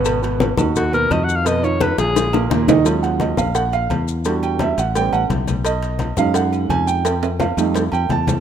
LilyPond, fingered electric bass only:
\new Staff \with { instrumentName = "Fingered electric bass" } { \clef bass \time 4/4 \key ees \minor \tempo 4 = 172 aes,,4. ees,4. f,4~ | f,4. bes,,4. ees,4~ | ees,4. bes,,4. fes,4~ | fes,4. a,,4 a,,8 b,,4~ |
b,,4. fis,4. f,4~ | f,4. f,4 f,8 fes,4 | }